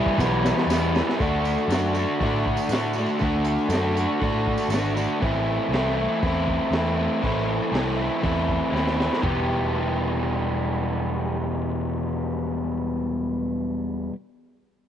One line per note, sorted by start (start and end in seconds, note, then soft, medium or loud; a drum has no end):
0.00 0.18 E3 medium
0.00 0.19 G3 medium
0.00 0.20 B3 medium
0.00 0.20 E4 medium
0.06 kick loud
0.17 0.51 B1 medium
0.17 0.93 E2 loud
0.17 0.94 B2 loud
0.17 0.66 E3 loud
0.17 0.68 G3 loud
0.17 kick loud
0.17 snare medium
0.17 tambourine medium
0.21 0.69 B3 loud
0.21 0.71 E4 loud
0.45 snare medium
0.45 tambourine medium
0.57 snare medium
0.67 1.00 E2 medium
0.67 0.96 E3 medium
0.67 0.95 G3 medium
0.67 0.93 B3 medium
0.67 snare loud
0.67 tambourine loud
0.72 0.91 E4 medium
0.92 1.19 G3 medium
0.92 1.18 B3 medium
0.92 1.17 E4 medium
0.92 snare loud
0.92 tambourine soft
0.97 1.17 E3 medium
1.09 snare loud
1.17 1.55 D2 medium
1.17 1.69 D3 medium
1.17 1.71 A3 medium
1.17 kick loud
1.17 open hi-hat medium
1.17 tambourine soft
1.22 1.72 D4 loud
1.22 1.74 F#4 loud
1.45 tambourine medium
1.58 tambourine soft
1.68 2.04 F#2 medium
1.68 2.20 D3 loud
1.68 1.99 A3 loud
1.68 open hi-hat medium
1.68 tambourine medium
1.72 1.97 D4 loud
1.72 1.94 F#4 loud
1.72 snare loud
1.95 2.22 D4 medium
1.95 2.23 F#4 medium
1.95 tambourine medium
1.99 2.22 A3 medium
2.20 2.56 A2 loud
2.20 2.70 D3 medium
2.20 2.72 A3 medium
2.20 2.73 D4 medium
2.20 kick loud
2.20 open hi-hat medium
2.25 2.74 F#4 medium
2.46 kick medium
2.57 tambourine medium
2.69 3.05 A2 medium
2.69 3.18 D3 medium
2.69 open hi-hat medium
2.69 tambourine loud
2.73 3.00 A3 medium
2.73 2.97 D4 medium
2.73 2.95 F#4 medium
2.73 snare loud
2.93 3.23 F#4 medium
2.93 tambourine medium
2.98 3.21 A3 medium
2.98 3.22 D4 medium
3.06 tambourine soft
3.19 3.56 D2 medium
3.19 3.68 D3 medium
3.19 3.70 A3 loud
3.19 kick loud
3.19 open hi-hat medium
3.19 tambourine soft
3.23 3.71 D4 medium
3.23 3.73 F#4 medium
3.44 tambourine medium
3.58 tambourine soft
3.69 4.05 F#2 medium
3.69 4.19 D3 medium
3.69 3.99 A3 loud
3.69 3.95 D4 loud
3.69 open hi-hat medium
3.69 tambourine loud
3.74 3.93 F#4 loud
3.74 snare loud
3.95 4.22 D4 medium
3.95 4.23 F#4 medium
3.95 tambourine medium
3.99 4.21 A3 medium
4.20 4.57 A2 medium
4.20 4.69 D3 medium
4.20 4.71 A3 medium
4.20 4.72 D4 medium
4.20 kick loud
4.20 open hi-hat medium
4.24 4.73 F#4 medium
4.47 kick medium
4.57 tambourine medium
4.68 5.05 G#1 medium
4.68 5.19 D3 medium
4.68 5.00 A3 medium
4.68 tambourine loud
4.73 4.96 D4 medium
4.73 4.94 F#4 medium
4.73 snare loud
4.73 open hi-hat soft
4.95 5.20 D4 medium
4.95 5.19 F#4 medium
4.95 tambourine medium
5.00 5.22 A3 medium
5.20 5.58 A1 medium
5.20 5.71 A2 medium
5.20 5.72 E3 loud
5.20 5.73 A3 medium
5.20 5.74 C4 medium
5.20 kick loud
5.20 open hi-hat medium
5.24 5.76 E4 loud
5.69 6.05 C2 medium
5.69 7.21 A2 medium
5.73 6.22 E3 medium
5.73 6.01 A3 medium
5.73 5.98 C4 loud
5.73 5.96 E4 loud
5.73 snare loud
5.73 open hi-hat medium
5.96 6.24 C4 medium
5.96 6.26 E4 medium
6.01 6.23 A3 medium
6.23 6.58 E2 medium
6.23 6.72 E3 medium
6.23 6.73 A3 medium
6.23 6.75 C4 medium
6.23 6.77 E4 medium
6.23 kick loud
6.23 open hi-hat medium
6.48 kick medium
6.71 7.07 E2 medium
6.71 7.23 E3 medium
6.71 7.00 A3 medium
6.71 snare loud
6.71 open hi-hat medium
6.76 6.98 C4 medium
6.76 6.96 E4 medium
6.96 7.24 C4 medium
6.96 7.25 E4 medium
7.01 7.23 A3 medium
7.22 7.58 A1 medium
7.22 7.70 A2 medium
7.22 7.71 E3 medium
7.22 7.73 A3 loud
7.22 7.74 C4 loud
7.22 kick loud
7.22 open hi-hat medium
7.26 7.75 E4 medium
7.72 8.07 C2 medium
7.72 8.22 A2 medium
7.72 8.19 E3 loud
7.72 8.01 A3 loud
7.72 7.98 C4 loud
7.72 snare loud
7.72 open hi-hat medium
7.76 7.95 E4 loud
7.96 8.23 C4 medium
7.96 8.24 E4 medium
8.02 8.22 A3 medium
8.20 8.58 E2 medium
8.20 8.69 E3 medium
8.20 8.71 A3 medium
8.20 kick loud
8.20 open hi-hat medium
8.24 8.72 C4 medium
8.24 8.73 E4 medium
8.49 kick medium
8.70 9.08 D#2 medium
8.70 9.20 E3 medium
8.70 8.99 A3 medium
8.70 8.96 C4 medium
8.75 8.94 E4 medium
8.75 snare medium
8.87 snare medium
8.96 9.21 C4 medium
8.96 9.20 E4 medium
9.00 9.23 A3 medium
9.00 snare medium
9.13 snare medium
9.21 14.09 E1 medium
9.21 14.11 E2 medium
9.21 14.12 B2 medium
9.21 14.13 E3 loud
9.21 14.13 G3 medium
9.21 14.14 B3 loud
9.21 14.15 G4 loud
9.21 kick loud
9.21 floor tom medium